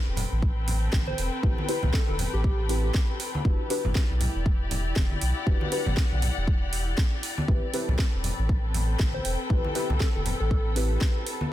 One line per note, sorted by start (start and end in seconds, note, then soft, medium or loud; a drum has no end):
0.00 3.45 C4 medium
0.00 4.29 A4 medium
0.00 4.64 B4 medium
0.00 3.45 G5 medium
0.07 0.25 E1 medium
0.17 open hi-hat loud
0.17 low conga medium
0.32 0.89 A1 medium
0.42 kick loud
0.68 open hi-hat medium
0.68 low conga medium
0.93 1.13 A1 medium
0.93 kick loud
0.93 snare loud
0.93 high conga medium
1.07 1.28 C5 medium
1.07 high conga medium
1.18 1.29 E1 medium
1.18 open hi-hat loud
1.43 1.54 A1 medium
1.43 1.66 C4 medium
1.43 1.66 E4 medium
1.43 1.66 G4 medium
1.43 1.66 B4 medium
1.43 kick loud
1.58 high conga medium
1.68 1.81 C4 medium
1.68 1.81 E4 medium
1.68 1.81 G4 medium
1.68 1.81 B4 loud
1.68 open hi-hat loud
1.83 1.91 C2 medium
1.83 high conga medium
1.83 low conga medium
1.94 2.03 A4 medium
1.94 kick loud
1.94 snare loud
2.08 2.27 E1 medium
2.08 2.15 A4 medium
2.08 high conga medium
2.19 open hi-hat loud
2.19 low conga medium
2.33 2.91 A1 medium
2.33 2.81 G4 medium
2.44 kick loud
2.69 3.42 C4 medium
2.69 3.42 E4 medium
2.69 3.43 G4 medium
2.69 3.43 B4 medium
2.69 open hi-hat loud
2.84 3.20 G4 medium
2.94 kick loud
2.94 snare loud
3.20 open hi-hat loud
3.35 high conga medium
3.45 3.56 E1 medium
3.45 3.64 D4 medium
3.45 8.34 E4 medium
3.45 3.64 F#4 medium
3.45 3.64 G4 medium
3.45 3.64 B4 medium
3.45 kick loud
3.57 8.66 G4 medium
3.70 3.83 D4 medium
3.70 3.83 F#4 medium
3.70 3.83 G4 medium
3.70 3.83 B4 loud
3.70 open hi-hat loud
3.81 3.93 G1 medium
3.81 9.06 D5 medium
3.81 low conga medium
3.95 kick loud
3.95 snare loud
4.10 4.28 B1 medium
4.21 open hi-hat loud
4.21 low conga medium
4.35 4.92 E1 medium
4.46 kick loud
4.71 open hi-hat loud
4.71 low conga medium
4.96 5.16 E1 medium
4.96 kick loud
4.96 snare loud
4.96 high conga medium
5.11 high conga medium
5.19 5.33 B1 medium
5.19 7.48 F#5 medium
5.19 open hi-hat loud
5.46 5.58 E1 loud
5.46 5.69 D4 medium
5.46 5.69 F#4 medium
5.46 5.69 G4 medium
5.46 5.70 B4 medium
5.46 kick loud
5.61 high conga medium
5.72 5.84 D4 medium
5.72 5.85 F#4 medium
5.72 5.85 G4 medium
5.72 5.85 B4 loud
5.72 open hi-hat loud
5.86 5.95 G1 medium
5.86 high conga medium
5.86 low conga medium
5.97 kick loud
5.97 snare loud
6.12 6.30 B1 medium
6.12 high conga medium
6.22 open hi-hat loud
6.22 low conga medium
6.37 6.94 E1 medium
6.48 kick loud
6.73 open hi-hat loud
6.98 kick loud
6.98 snare loud
7.23 open hi-hat loud
7.38 high conga medium
7.48 7.59 A1 medium
7.48 7.67 C4 medium
7.48 11.52 C4 medium
7.48 7.67 E4 medium
7.48 7.67 G4 medium
7.48 7.67 B4 medium
7.48 kick loud
7.70 7.86 C4 loud
7.70 7.86 E4 medium
7.70 7.86 G4 medium
7.70 11.53 A4 medium
7.70 open hi-hat loud
7.74 7.87 B4 loud
7.83 11.53 B4 medium
7.88 7.96 C2 medium
7.88 low conga medium
7.99 kick loud
7.99 snare loud
8.13 8.32 E1 medium
8.24 open hi-hat loud
8.24 low conga medium
8.39 8.96 A1 medium
8.49 kick loud
8.57 11.52 G5 medium
8.74 open hi-hat loud
8.74 low conga medium
8.99 9.20 A1 medium
8.99 kick loud
8.99 snare loud
8.99 high conga medium
9.13 9.35 C5 medium
9.13 high conga medium
9.25 9.36 E1 medium
9.25 open hi-hat loud
9.50 9.61 A1 loud
9.50 9.73 C4 medium
9.50 9.73 E4 medium
9.50 9.73 G4 medium
9.50 9.73 B4 medium
9.50 kick loud
9.65 high conga medium
9.75 9.88 C4 medium
9.75 9.88 E4 medium
9.75 9.88 G4 medium
9.75 9.88 B4 loud
9.75 open hi-hat loud
9.90 9.98 C2 medium
9.90 high conga medium
9.90 low conga medium
10.00 10.10 A4 medium
10.00 kick loud
10.00 snare loud
10.15 10.33 E1 medium
10.15 10.22 A4 medium
10.15 high conga medium
10.26 open hi-hat medium
10.26 low conga medium
10.40 10.97 A1 medium
10.40 10.91 A4 loud
10.51 kick loud
10.76 11.49 C4 medium
10.76 11.49 E4 medium
10.76 11.49 G4 medium
10.76 11.50 B4 medium
10.76 open hi-hat medium
11.01 kick loud
11.01 snare loud
11.27 open hi-hat loud
11.41 high conga medium